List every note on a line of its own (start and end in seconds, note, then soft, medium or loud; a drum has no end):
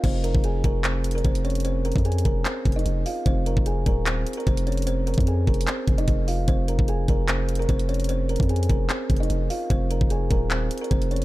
0.04 0.33 F1 loud
0.04 0.21 C4 medium
0.04 0.21 C5 loud
0.04 kick loud
0.04 closed hi-hat medium
0.04 crash loud
0.24 0.41 A#4 medium
0.24 0.41 A#5 medium
0.24 closed hi-hat medium
0.35 0.63 F1 loud
0.35 kick loud
0.44 0.61 G#4 medium
0.44 0.61 G#5 medium
0.44 closed hi-hat medium
0.64 1.22 F1 loud
0.64 0.81 A#4 medium
0.64 0.82 A#5 medium
0.64 kick loud
0.64 closed hi-hat medium
0.84 1.14 C4 medium
0.84 1.13 C5 medium
0.84 clap loud
0.84 closed hi-hat medium
1.04 closed hi-hat medium
1.11 1.23 A#4 medium
1.11 closed hi-hat medium
1.16 1.23 A#5 medium
1.16 closed hi-hat soft
1.24 1.93 F1 loud
1.24 1.42 C4 medium
1.24 1.42 C5 medium
1.24 kick loud
1.24 closed hi-hat medium
1.35 closed hi-hat medium
1.45 1.62 C#4 medium
1.45 1.62 C#5 medium
1.45 closed hi-hat soft
1.50 closed hi-hat soft
1.55 closed hi-hat medium
1.60 closed hi-hat medium
1.65 1.82 C4 medium
1.65 1.82 C5 loud
1.65 closed hi-hat medium
1.85 2.02 A#4 medium
1.85 2.02 A#5 medium
1.85 closed hi-hat soft
1.92 closed hi-hat soft
1.96 2.24 F2 loud
1.96 kick loud
1.96 closed hi-hat medium
2.05 2.22 G#4 medium
2.05 2.22 G#5 medium
2.05 closed hi-hat medium
2.12 closed hi-hat medium
2.18 closed hi-hat medium
2.25 2.45 F1 loud
2.25 2.42 A#4 medium
2.25 2.43 A#5 medium
2.25 kick loud
2.25 closed hi-hat medium
2.45 2.75 C4 medium
2.45 2.74 C5 medium
2.45 clap loud
2.45 closed hi-hat medium
2.65 2.85 F1 loud
2.65 kick loud
2.65 closed hi-hat medium
2.72 3.04 D#5 medium
2.72 closed hi-hat medium
2.77 3.04 D#4 medium
2.77 closed hi-hat medium
2.86 3.05 F1 loud
2.86 closed hi-hat medium
3.06 3.23 F4 medium
3.06 3.23 F5 medium
3.06 open hi-hat medium
3.26 3.55 F1 loud
3.26 3.43 C4 medium
3.26 3.43 C5 loud
3.26 kick loud
3.26 closed hi-hat medium
3.46 3.63 A#4 medium
3.46 3.63 A#5 medium
3.46 closed hi-hat medium
3.57 3.85 F1 loud
3.57 kick loud
3.66 3.83 G#4 medium
3.66 3.84 G#5 medium
3.66 closed hi-hat medium
3.86 4.25 D#1 loud
3.86 4.03 A#4 medium
3.86 4.04 A#5 medium
3.86 kick loud
3.86 closed hi-hat medium
4.06 4.36 C4 medium
4.06 4.35 C5 medium
4.06 clap loud
4.06 closed hi-hat medium
4.27 closed hi-hat medium
4.33 4.45 A#4 medium
4.33 closed hi-hat medium
4.38 4.46 A#5 medium
4.38 closed hi-hat soft
4.47 5.15 F1 loud
4.47 4.64 C4 medium
4.47 4.64 C5 loud
4.47 kick loud
4.47 closed hi-hat medium
4.57 closed hi-hat medium
4.67 4.84 C#4 medium
4.67 4.84 C#5 medium
4.67 closed hi-hat soft
4.72 closed hi-hat soft
4.77 closed hi-hat medium
4.82 closed hi-hat medium
4.87 5.04 C4 medium
4.87 5.04 C5 loud
4.87 closed hi-hat medium
5.07 5.24 A#4 medium
5.07 5.24 A#5 medium
5.07 closed hi-hat medium
5.14 5.46 F2 loud
5.14 closed hi-hat medium
5.18 kick loud
5.18 closed hi-hat medium
5.27 5.44 G#4 medium
5.27 5.45 G#5 medium
5.27 closed hi-hat medium
5.47 5.67 F1 loud
5.47 5.64 A#4 medium
5.47 5.65 A#5 medium
5.47 kick loud
5.47 closed hi-hat soft
5.54 closed hi-hat medium
5.61 closed hi-hat medium
5.67 5.97 C4 medium
5.67 5.96 C5 medium
5.67 clap loud
5.67 closed hi-hat medium
5.88 6.07 F1 loud
5.88 kick loud
5.88 closed hi-hat medium
5.98 6.26 D#4 medium
5.98 6.26 D#5 medium
5.98 closed hi-hat medium
6.08 6.46 F1 loud
6.08 kick medium
6.08 closed hi-hat medium
6.28 6.45 F4 medium
6.28 6.45 F5 medium
6.28 open hi-hat medium
6.48 6.78 F1 loud
6.48 6.65 C4 medium
6.48 6.65 C5 loud
6.48 kick loud
6.48 closed hi-hat medium
6.68 6.85 A#4 medium
6.68 6.85 A#5 medium
6.68 closed hi-hat medium
6.79 7.07 F1 loud
6.79 kick loud
6.88 7.05 G#4 medium
6.88 7.06 G#5 medium
6.88 closed hi-hat medium
7.08 7.66 F1 loud
7.08 7.26 A#4 medium
7.08 7.26 A#5 medium
7.08 kick medium
7.08 closed hi-hat medium
7.28 7.58 C4 medium
7.28 7.58 C5 medium
7.28 clap loud
7.28 closed hi-hat medium
7.49 closed hi-hat medium
7.55 7.67 A#4 medium
7.55 closed hi-hat medium
7.60 7.68 A#5 medium
7.60 closed hi-hat soft
7.69 8.37 F1 loud
7.69 7.86 C4 medium
7.69 7.86 C5 medium
7.69 kick medium
7.69 closed hi-hat medium
7.79 closed hi-hat medium
7.89 8.06 C#4 medium
7.89 8.06 C#5 medium
7.89 closed hi-hat soft
7.94 closed hi-hat soft
8.00 closed hi-hat medium
8.04 closed hi-hat medium
8.09 8.26 C4 medium
8.09 8.26 C5 loud
8.09 closed hi-hat medium
8.29 8.46 A#4 medium
8.29 8.47 A#5 medium
8.29 closed hi-hat soft
8.36 closed hi-hat soft
8.40 8.68 F2 loud
8.40 kick loud
8.40 closed hi-hat medium
8.49 8.66 G#4 medium
8.49 8.67 G#5 medium
8.49 closed hi-hat medium
8.56 closed hi-hat medium
8.63 closed hi-hat medium
8.69 8.89 F1 loud
8.69 8.86 A#4 medium
8.69 8.87 A#5 medium
8.69 kick loud
8.69 closed hi-hat medium
8.89 9.19 C4 medium
8.89 9.19 C5 medium
8.89 clap loud
8.89 closed hi-hat medium
9.10 9.29 F1 loud
9.10 kick loud
9.10 closed hi-hat medium
9.16 9.48 D#5 medium
9.16 closed hi-hat medium
9.21 9.49 D#4 medium
9.21 closed hi-hat medium
9.30 9.49 F1 loud
9.30 closed hi-hat medium
9.50 9.68 F4 medium
9.50 9.67 F5 medium
9.50 open hi-hat medium
9.70 10.00 F1 loud
9.70 9.88 C4 medium
9.70 9.87 C5 loud
9.70 kick loud
9.70 closed hi-hat medium
9.90 10.07 A#4 medium
9.90 10.08 A#5 medium
9.90 closed hi-hat medium
10.01 10.29 F1 loud
10.01 kick loud
10.10 10.27 G#4 medium
10.10 10.28 G#5 medium
10.10 closed hi-hat medium
10.30 10.69 D#1 loud
10.30 10.47 A#4 medium
10.30 10.48 A#5 medium
10.30 kick loud
10.30 closed hi-hat medium
10.51 10.80 C4 medium
10.51 10.80 C5 medium
10.51 clap loud
10.51 closed hi-hat medium
10.71 closed hi-hat medium
10.78 10.89 A#4 medium
10.78 closed hi-hat medium
10.82 10.90 A#5 medium
10.82 closed hi-hat soft
10.91 11.25 F1 loud
10.91 11.08 C4 medium
10.91 11.08 C5 loud
10.91 kick medium
10.91 closed hi-hat medium
11.02 closed hi-hat medium
11.11 11.25 C#4 medium
11.11 11.25 C#5 medium
11.11 closed hi-hat soft
11.16 closed hi-hat soft
11.22 closed hi-hat medium